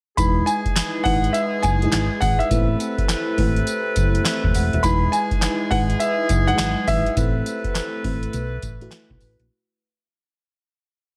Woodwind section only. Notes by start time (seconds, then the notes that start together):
0.17 E3 G#3 G#4
2.51 C3 A4 B4
4.84 E3 G#3 G#4
7.17 C3 A4 B4
8.33 E3